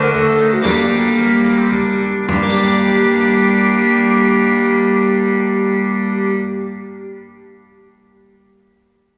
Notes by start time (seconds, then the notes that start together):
Already playing: D3 A3 D4 F#4
0.03 A#4
0.14 A3 F#4 A4, frame drum
0.40 D#4
0.53 F#4
0.62 G3 A#3 D4 G4, frame drum
1.18 A#3
1.45 frame drum
1.59 C4
1.71 D4, frame drum
2.28 G2 G3 A#3 D4 G4, frame drum
2.36 G3
2.43 A#3
2.50 D4
2.57 G4
2.64 D5